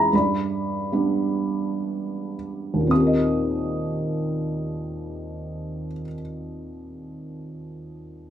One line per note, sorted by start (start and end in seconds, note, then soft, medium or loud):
0.00 0.14 E2 soft
0.00 0.14 G#3 soft
0.00 0.14 B3 soft
0.00 0.14 E4 soft
0.00 0.14 G#4 soft
0.00 0.14 E5 medium
0.00 0.14 F#5 medium
0.00 0.14 G#5 medium
0.00 0.14 A#5 medium
0.00 0.14 B5 medium
0.13 2.86 G2 soft
0.13 2.34 B5 medium
0.17 2.35 D5 soft
0.92 2.86 G3 soft
0.92 2.86 B3 soft
0.92 2.87 D4 soft
2.74 5.86 D#2 soft
2.81 5.93 A#2 soft
2.87 5.99 C4 soft
2.91 6.06 G4 soft
2.91 6.03 D#6 soft
3.00 6.12 A#4 soft
3.07 6.19 D#5 soft